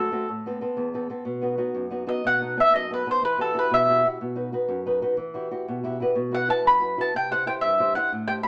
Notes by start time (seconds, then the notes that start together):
Already playing: F#2 A3 A4
0.00 C4 F#4
0.11 A3 C4 F#4
0.29 A2
0.46 B3 C4 A4
0.61 B3 C4 A4
0.77 E2
0.94 B3 C4 A4
1.10 B3 C4 A4
1.25 B2
1.41 B3 D#4 F#4
1.58 B3 D#4 F#4
1.75 F#2
1.90 B3 D#4 F#4
2.07 B3 D#4 F#4 D#5
2.24 B2 F#5
2.41 B3 D#4 A4
2.57 B3 D#4 A4 E5
2.73 F#2 D#5
2.90 B3 D#4 A4 B4
3.06 B3 D#4 A4
3.11 C5
3.22 E3 B4
3.38 E4 F#4 G4 A4
3.54 E4 F#4 G4
3.59 B4
3.71 B2 E5
3.89 E4 F#4 G4
4.05 E4 F#4 G4
4.21 B2
4.35 D#4 F#4 B4
4.52 D#4 F#4 B4
4.68 F#2
4.86 D#4 F#4 B4
5.02 D#4 F#4 B4
5.17 E3
5.34 E4 F#4 G4
5.51 E4 F#4 G4
5.68 B2
5.84 E4 F#4 G4 E5
6.00 E4 F#4 G4 B4
6.15 B2
6.31 E4 F#4 B4 F#5
6.48 E4 F#4 B4 A5
6.65 F#2 B5
6.80 E4 F#4 B4
6.97 E4 F#4 B4 A5
7.14 C3 G5
7.31 E4 G4 C5 F#5
7.46 E4 G4 C5 G5
7.61 G2 E5
7.79 E4 G4 C5
7.95 E4 G4 C5 F#5
8.12 A2
8.28 G4 A4 C5 G5
8.43 G4 A4 B5